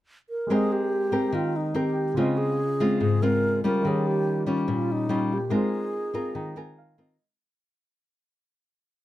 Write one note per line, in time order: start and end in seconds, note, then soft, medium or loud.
0.30 0.53 A#4 medium
0.47 2.12 G#3 soft
0.47 1.32 G#3 medium
0.47 1.10 C4 soft
0.47 2.13 G4 soft
0.47 1.10 G4 soft
0.47 2.14 A#4 soft
0.51 0.74 G#4 medium
0.51 1.10 A#4 soft
0.51 2.15 C5 soft
0.51 2.15 D#5 soft
0.72 1.36 G4 medium
1.12 1.72 C4 medium
1.12 1.72 G4 soft
1.12 1.72 A#4 medium
1.32 2.15 D#3 medium
1.32 1.58 F4 medium
1.56 1.78 D#4 medium
1.74 2.13 C4 medium
1.74 2.14 G4 medium
1.74 2.19 G4 medium
1.74 2.14 A#4 soft
2.14 3.80 C#3 soft
2.14 2.99 C#3 medium
2.14 2.59 G#3 soft
2.14 2.59 C4 medium
2.14 3.81 F4 soft
2.14 2.39 F4 medium
2.14 2.59 F4 medium
2.14 3.81 G#4 soft
2.19 3.82 C5 soft
2.19 3.83 D#5 soft
2.38 3.00 G#4 medium
2.80 3.19 G#3 medium
2.80 3.19 C4 soft
2.80 3.19 F4 medium
3.00 3.82 G#2 medium
3.00 3.24 G#4 medium
3.22 3.61 G#3 soft
3.22 3.61 C4 soft
3.22 3.61 F4 medium
3.22 3.64 A#4 medium
3.64 4.44 G3 medium
3.64 4.45 C#4 medium
3.64 4.45 F4 medium
3.64 3.89 A#4 medium
3.81 5.47 D#3 soft
3.81 4.66 D#3 medium
3.81 5.48 F4 soft
3.81 5.49 G4 soft
3.86 4.09 G#4 medium
3.86 5.50 A#4 soft
3.86 5.50 C#5 soft
4.07 4.42 G4 medium
4.46 5.06 G3 soft
4.46 5.07 C#4 medium
4.46 5.07 F4 medium
4.68 5.50 A#2 medium
4.68 4.93 F4 medium
4.92 5.35 D#4 medium
5.09 5.37 G3 medium
5.09 5.37 C#4 medium
5.09 5.37 F4 medium
5.33 5.56 G4 medium
5.49 7.15 G#3 soft
5.49 6.33 G#3 medium
5.49 6.11 C4 soft
5.49 7.16 D#4 soft
5.49 6.11 F4 soft
5.49 7.16 F4 soft
5.49 6.11 A#4 medium
5.54 6.79 G#4 medium
5.54 7.17 A#4 soft
5.54 7.18 C5 soft
6.14 6.53 C4 soft
6.14 6.53 F4 medium
6.14 6.53 A#4 medium
6.14 6.35 A#5 soft
6.35 7.17 D#3 medium
6.35 6.56 A#5 soft
6.56 6.95 C4 medium
6.56 6.95 F4 soft
6.56 6.96 A#4 medium
6.56 6.77 G#5 soft
6.78 6.98 F5 soft
6.98 7.16 C4 medium
6.98 7.16 F4 medium
6.98 7.16 A#4 medium
6.98 7.19 D#5 soft